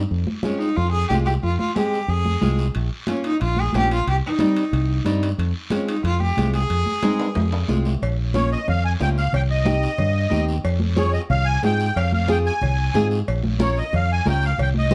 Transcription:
0.11 fingered electric bass F2, high conga, long guiro
0.27 high conga
0.43 nylon-string guitar G#3 C4 F4, cello C#4, high conga, short guiro
0.59 cello D#4, short guiro
0.76 fingered electric bass F2, cello F4, high conga, long guiro
0.92 cello G#4
1.09 fingered electric bass C2, nylon-string guitar G#3 C4 F4, cello G4, high conga, short guiro
1.26 cello G4, short guiro
1.43 fingered electric bass F2, cello F4, high conga, long guiro
1.59 cello F4, high conga
1.75 nylon-string guitar G#3 C4 G#4, cello G4, high conga, short guiro
1.93 short guiro
2.08 fingered electric bass F2, cello G#4, high conga, long guiro
2.25 high conga
2.41 fingered electric bass C2, nylon-string guitar G#3 C4 F4, high conga, short guiro
2.59 short guiro
2.74 fingered electric bass A#1, high conga, high timbale, long guiro
3.07 nylon-string guitar A#3 C#4 F4, cello C#4, high conga, high timbale, short guiro
3.24 cello D#4, high timbale, short guiro
3.41 fingered electric bass A#1, cello F4, high conga, high timbale, long guiro
3.57 high conga
3.61 cello G#4
3.73 fingered electric bass A#1, nylon-string guitar A#3 C#4 F4, high conga, high timbale, low timbale, short guiro
3.77 cello G4
3.91 cello F4, high timbale, short guiro
4.06 fingered electric bass C2, cello G4, high conga, high timbale, long guiro
4.26 cello D#4
4.39 nylon-string guitar G3 C4 D#4, high conga, high timbale, short guiro
4.57 high timbale, short guiro
4.72 fingered electric bass C2, high conga, high timbale, long guiro
5.05 fingered electric bass G2, nylon-string guitar G3 C4 D#4, high conga, high timbale, short guiro
5.23 high timbale, short guiro
5.38 fingered electric bass F2, high conga, high timbale, long guiro
5.70 nylon-string guitar G#3 C4 F4, cello C#4, high conga, high timbale, short guiro
5.88 cello D#4, high timbale, short guiro
6.04 fingered electric bass F2, cello F4, high conga, high timbale, long guiro
6.20 cello G4, high conga
6.37 fingered electric bass C2, nylon-string guitar G#3 C4 F4, high conga, high timbale, short guiro
6.54 cello G#4, high timbale, short guiro
6.70 fingered electric bass F2, high conga, high timbale, long guiro
6.86 high conga
7.03 nylon-string guitar G#3 C4 D#4, high conga, high timbale, short guiro
7.19 high timbale, short guiro
7.35 fingered electric bass F2, high conga, low timbale, long guiro
7.52 high timbale
7.68 fingered electric bass C2, nylon-string guitar G#3 C4 F4, high conga, low timbale, short guiro
7.85 low timbale, short guiro
8.02 fingered electric bass A#1, cowbell, high conga, long guiro
8.34 nylon-string guitar A#3 C#4 F4, accordion C#5, high conga, short guiro
8.52 accordion D#5, short guiro
8.68 fingered electric bass F2, accordion F5, cowbell, high conga, low conga, long guiro
8.85 accordion G#5
9.00 fingered electric bass C#2, nylon-string guitar A#3 C#4 F4, accordion G5, high conga, low timbale, short guiro
9.18 accordion F5, short guiro
9.33 fingered electric bass C2, accordion G5, cowbell, high conga, low conga, long guiro
9.51 accordion D#5
9.65 nylon-string guitar C4 D#4 G4, high conga, short guiro
9.83 short guiro
9.98 fingered electric bass G2, cowbell, high conga, low conga, long guiro
10.30 fingered electric bass D#2, nylon-string guitar C4 D#4 G4, high conga, short guiro
10.49 short guiro
10.64 fingered electric bass F2, cowbell, high conga, long guiro
10.80 high conga
10.96 nylon-string guitar C4 F4 G#4, accordion C#5, high conga, short guiro
11.13 accordion D#5, short guiro
11.30 fingered electric bass C2, accordion F5, cowbell, high conga, low conga, long guiro
11.45 accordion G#5
11.62 fingered electric bass G#2, nylon-string guitar C4 F4 G#4, accordion G5, high conga, low timbale, short guiro
11.80 short guiro
11.96 fingered electric bass F2, accordion F5, cowbell, high conga, long guiro
12.12 accordion F5, high conga
12.27 nylon-string guitar C4 F4 G#4, accordion G5, high conga, short guiro
12.46 accordion G#5, short guiro
12.62 fingered electric bass C2, cowbell, high conga, low conga, long guiro
12.94 fingered electric bass G#2, nylon-string guitar C4 F4 G#4, high conga, low conga, low timbale, short guiro
13.11 short guiro
13.27 fingered electric bass A#1, cowbell, high conga, long guiro
13.43 high conga
13.59 nylon-string guitar C#4 F4 A#4, accordion C#5, high conga, short guiro
13.77 accordion D#5, short guiro
13.93 fingered electric bass F2, accordion F5, cowbell, high conga, low conga, long guiro
14.12 accordion G#5
14.25 fingered electric bass C#2, nylon-string guitar C#4 F4 A#4, accordion G5, high conga, low timbale, short guiro
14.43 accordion F5, short guiro
14.58 fingered electric bass C2, cowbell, high conga, low conga, long guiro
14.62 accordion G5
14.74 accordion D#5, high conga
14.91 nylon-string guitar D#4 G4 C5, high conga, short guiro

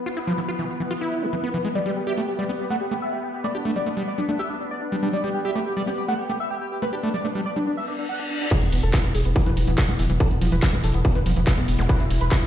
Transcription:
Already playing: synth texture B3 B4
0.06 acid bass F4
0.17 acid bass E4
0.27 acid bass F3
0.38 acid bass E3
0.48 acid bass F4
0.59 acid bass E3
0.80 acid bass E3
0.91 acid bass F4
1.01 acid bass E4
1.22 acid bass E3
1.33 acid bass E3
1.44 acid bass B3
1.54 acid bass E3
1.65 acid bass G#3
1.75 acid bass G3, analog synth lead D5
1.86 acid bass G3, analog synth lead G4
1.96 analog synth lead G4
2.07 acid bass G4, analog synth lead E5
2.17 acid bass A3, analog synth lead G4
2.28 analog synth lead G4
2.39 acid bass G3, analog synth lead D5
2.49 acid bass B3, analog synth lead G4
2.60 analog synth lead G4
2.70 acid bass A3, analog synth lead F#5
2.81 analog synth lead G4
2.91 acid bass A3, analog synth lead G4
3.02 analog synth lead E5
3.13 analog synth lead G4
3.23 analog synth lead G4
3.34 analog synth lead G4
3.44 acid bass A3, analog synth lead D5
3.55 analog synth lead D4, acid bass G4
3.65 acid bass A3, analog synth lead D4
3.76 acid bass G3, analog synth lead D5
3.86 acid bass A3, analog synth lead D4
3.97 acid bass G3, analog synth lead D4
4.08 analog synth lead D5
4.18 acid bass G3, analog synth lead D4
4.29 acid bass A3, analog synth lead D4
4.39 acid bass G4, analog synth lead E5
4.50 analog synth lead D4
4.60 analog synth lead D4
4.71 analog synth lead D5
4.82 analog synth lead D4
4.92 acid bass G3, analog synth lead D4
5.03 acid bass G3, analog synth lead D4
5.13 acid bass G3, analog synth lead D5
5.24 acid bass G3, analog synth lead G4
5.34 analog synth lead G4
5.45 acid bass G4, analog synth lead E5
5.56 acid bass A3, analog synth lead G4
5.66 analog synth lead G4
5.77 acid bass G3, analog synth lead D5
5.87 acid bass B3, analog synth lead G4
5.98 analog synth lead G4
6.08 acid bass A3, analog synth lead F#5
6.19 analog synth lead G4
6.29 acid bass A3, analog synth lead G4
6.40 analog synth lead E5
6.51 analog synth lead G4
6.61 analog synth lead G4
6.72 analog synth lead G4
6.82 acid bass A3, analog synth lead B4
6.93 analog synth lead D4, acid bass G4
7.03 acid bass A3, analog synth lead D4
7.14 acid bass G3, analog synth lead D5
7.25 acid bass A3, analog synth lead D4
7.35 acid bass G3, analog synth lead D4
7.46 analog synth lead D5
7.56 acid bass G3, analog synth lead D4
7.67 analog synth lead D4, reverse cymbal
7.77 analog synth lead E5
7.88 analog synth lead D4
7.99 analog synth lead D4
8.09 analog synth lead F#5
8.20 analog synth lead D4
8.30 analog synth lead D4
8.41 analog synth lead D4
8.51 synth texture E3 E4, acid bass E3, analog synth lead G#4, kick, closed hi-hat, crash, impact
8.62 analog synth bass E1, analog synth lead B3, closed hi-hat
8.72 analog synth bass E1, analog synth lead B3, open hi-hat
8.83 analog synth bass E1, analog synth lead A4, closed hi-hat
8.94 analog synth lead B3, acid bass E4, kick, clap, closed hi-hat
9.04 analog synth bass E1, analog synth lead B3, closed hi-hat
9.15 analog synth bass E1, analog synth lead G#4, open hi-hat
9.25 analog synth bass E1, analog synth lead B3, closed hi-hat
9.36 acid bass E3, analog synth lead B3, kick, closed hi-hat
9.46 analog synth bass E1, acid bass E3, analog synth lead B4, closed hi-hat
9.57 analog synth bass E1, analog synth lead B3, open hi-hat
9.67 analog synth bass E1, acid bass E3, analog synth lead B3, closed hi-hat
9.78 analog synth lead A4, kick, clap, closed hi-hat
9.89 analog synth bass E1, acid bass G#3, analog synth lead B3, closed hi-hat
9.99 analog synth bass E1, acid bass E3, analog synth lead B3, open hi-hat
10.10 analog synth bass E1, acid bass E3, analog synth lead B3, closed hi-hat
10.20 analog synth lead A4, kick, closed hi-hat
10.31 analog synth bass E1, analog synth lead B3, closed hi-hat
10.41 analog synth bass E1, acid bass F3, analog synth lead B3, open hi-hat
10.52 analog synth bass E1, acid bass E3, analog synth lead B4, closed hi-hat
10.63 acid bass E3, analog synth lead B3, kick, clap, closed hi-hat
10.73 analog synth bass E1, acid bass G#3, analog synth lead B3, closed hi-hat
10.84 analog synth bass E1, acid bass E3, analog synth lead A4, open hi-hat
10.94 analog synth bass E1, analog synth lead B3, closed hi-hat
11.05 analog synth lead B3, kick, closed hi-hat
11.15 analog synth bass E1, acid bass D3, analog synth lead B4, closed hi-hat
11.26 analog synth bass E1, acid bass F3, analog synth lead B3, open hi-hat
11.36 analog synth bass E1, acid bass E3, analog synth lead B3, closed hi-hat
11.47 analog synth lead B4, kick, clap, closed hi-hat
11.58 analog synth bass E1, acid bass G#3, analog synth lead B3, closed hi-hat
11.68 analog synth bass E1, analog synth lead B3, open hi-hat
11.79 analog synth bass E1, acid bass G#3, analog synth lead B3, closed hi-hat, zap
11.89 acid bass E3, analog synth lead B4, kick, closed hi-hat
12.00 analog synth bass E1, analog synth lead E4, closed hi-hat
12.10 analog synth bass E1, analog synth lead E4, open hi-hat
12.21 analog synth bass E1, analog synth lead B4, closed hi-hat
12.32 acid bass E4, analog synth lead E4, kick, clap, closed hi-hat
12.42 analog synth bass E1, analog synth lead E4, closed hi-hat

